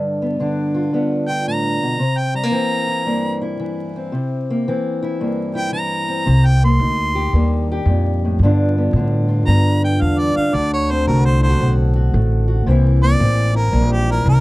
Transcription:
Already playing: G2 D3
0.22 B3
0.40 D3 D4
0.75 F4
0.93 G2 B3
1.28 F4 G5
1.47 A2 A#5
1.82 B2
1.99 C3
2.18 G5
2.34 G3 A#5
2.43 A#3
2.51 E3 C4
2.88 E4
3.06 G2 A#3
3.41 E4
3.60 E3
3.96 C4
4.12 C3
4.50 A#3
4.68 E3 C4
5.03 E4
5.20 G2 A#3
5.55 E4 G5
5.72 E3 A#5
6.08 C4
6.25 C2 C3
6.46 G5
6.64 A#3 C6
6.80 D2 D#4
7.15 G4
7.33 D#2 G2 A#3
7.72 G4
7.85 F2 A#2
8.25 A2
8.39 G2 D3
8.44 B3 D4 F4
8.78 B3
8.93 A2 D3 D4
9.28 F4
9.46 G2 B3 A#5
9.82 F4 G5
10.01 E2 D3 F5
10.19 D5
10.35 D4 F5, muted upright bass stroke
10.52 D2 D3 D5
10.74 C#5
10.91 C4 C5
11.07 C2 A3 F#4 A#4
11.25 C5
11.41 E4 C5
11.49 F#4
11.60 B1 A2 C4
11.96 F#4
12.14 A1 A3
12.48 F#4
12.66 C2 C3 E3 A#3 C4
12.70 E4
13.03 A#3 D5
13.20 A1 E3 C4
13.55 E4 A#4
13.72 A#1 G2 A#3
13.92 G4
14.10 E4 A#4
14.25 C2 E3 A#4

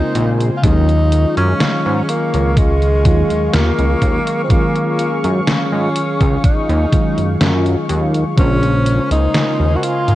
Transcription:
Already playing: C#3 G#3 A#3 C4 D#4 F4 A#4 G#5 C6
0.15 A#1, closed hi-hat
0.40 closed hi-hat
0.57 F4
0.62 D#2 D#3 F#3 G#3 C#4 D#4 F4 G#4 F5 C#6, kick, closed hi-hat
0.89 closed hi-hat
1.12 closed hi-hat
1.37 F#2 C#4, closed hi-hat
1.60 snare, closed hi-hat
1.86 G#2
2.09 A#3, closed hi-hat
2.34 C#2, closed hi-hat
2.57 G#3, kick, closed hi-hat
2.82 closed hi-hat
3.05 D#2 D#3 F#3 G#3 C#4 F4, kick, closed hi-hat
3.30 D#2, closed hi-hat
3.54 D#2 A#3, snare, closed hi-hat
3.79 C#2, closed hi-hat
4.02 D#2, kick, closed hi-hat
4.27 closed hi-hat
4.44 C4
4.49 D#3 F#3 G#3 A#3 C#4 F4, kick, closed hi-hat
4.76 closed hi-hat
4.99 closed hi-hat
5.24 F#2, closed hi-hat
5.47 C#4, snare, closed hi-hat
5.72 G#2
5.96 closed hi-hat
6.21 C#2, kick, closed hi-hat
6.44 D#4, kick, closed hi-hat
6.69 D#2, closed hi-hat
6.92 D#3 F#3 G#3 C#4 F4, kick, closed hi-hat
7.18 F#2, closed hi-hat
7.41 F#2, snare, closed hi-hat
7.66 closed hi-hat
7.89 D#2, closed hi-hat
8.14 closed hi-hat
8.36 A#1 C#3 G#3 A#3 C#4 F4 A#4 C5 G#5 C6, kick, closed hi-hat
8.63 closed hi-hat
8.86 closed hi-hat
9.11 C#2 D#4, closed hi-hat
9.35 snare, closed hi-hat
9.60 D#2
9.76 F#4
9.83 F4, closed hi-hat
10.08 G#2, closed hi-hat

